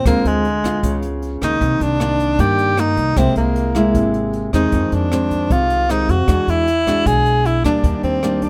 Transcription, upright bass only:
0.06 D2
0.25 D2
0.83 C#2
1.42 C#2
1.61 C2
1.80 C2
2.39 G2
2.97 C2
3.16 C2
3.36 C2
3.95 G#1
4.53 E2
4.72 F2
4.92 F2
5.50 C2
6.09 F2
6.28 E2
6.47 E2
7.06 B1
7.64 D2
7.83 D#2
8.03 D#2

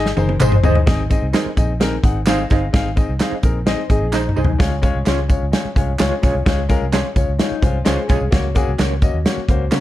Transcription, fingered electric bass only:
Already playing: G#1
0.17 F#1
0.41 G#1
0.64 G1
0.87 G#1
1.22 C2
1.46 muted fingered electric bass stroke
1.57 A#1
2.03 G#1
2.51 G1
2.74 G#1
3.09 C2
3.32 muted fingered electric bass stroke
3.43 A#1
3.90 G#1
4.02 A#1
4.37 C2
4.60 C#2
4.95 C2
5.07 C#2
5.42 C#2
5.65 muted fingered electric bass stroke
5.76 C2
6.00 C#2
6.23 B1
6.35 C2
6.46 C#2
6.82 C2
7.16 C#2
7.28 C#2
7.51 muted fingered electric bass stroke
7.62 C2
7.86 C#2
8.10 B1
8.21 C2
8.32 C#2
8.68 C2
8.79 C#2
9.14 D#2
9.37 muted fingered electric bass stroke
9.48 C#2
9.72 C#3

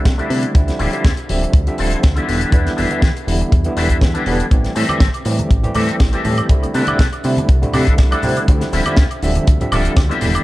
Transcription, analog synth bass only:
0.05 C2
0.30 C3
0.55 D2
0.80 D1
1.05 D2
1.30 D1
1.53 D2
1.79 D1
2.04 D2
2.29 E1
2.53 E2
2.78 E1
2.91 E2
3.02 E2
3.28 E1
3.52 E2
3.77 E1
3.90 E2
4.01 E2
4.26 E1
4.51 A1
4.76 A2
5.01 A1
5.26 A2
5.51 A1
5.75 A2
6.00 A1
6.25 A2
6.49 C2
6.75 C3
6.88 C2
6.99 C2
7.25 C3
7.49 C2
7.74 C3
7.88 C2
7.99 C2
8.24 C3
8.48 D2
8.73 D1
8.97 D2
9.23 D1
9.48 D2
9.72 D1
9.97 D2
10.22 E1

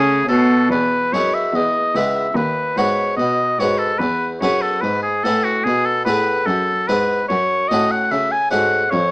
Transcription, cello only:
Already playing: C#3
0.27 B2
0.69 E2
1.12 F#2
1.53 E2
1.95 C#2
2.35 D#2
2.76 G#2
3.17 B2
3.58 G#2
4.00 E2
4.41 F#2
4.82 G#2
5.23 A2
5.65 B2
6.06 A2
6.46 F#2
6.88 G#2
7.30 F#2
7.71 A2
8.11 C#3
8.52 G#2
8.93 F2

